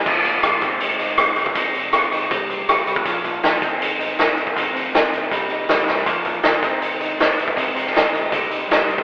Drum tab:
CC |x---------------|----------------|----------------|----------------|
HH |--x-x-x-x-x-x-x-|x-x-x-x-x-x-x-x-|x-x-x-x-x-x-x-x-|x-x-x-x-x-x-x---|
SD |----r-------r---|----r-------r---|----o-------o---|----o-------o-o-|
BD |o-o---o--------o|o-------o------o|o-o---o--------o|o-------o-------|

CC |----------------|----------------|
HH |x-x-x-x-x-x-x-x-|x-x-x-x-x-x-x-x-|
SD |----o-------o---|---oo-------o---|
BD |o-o---o--------o|o-------o------o|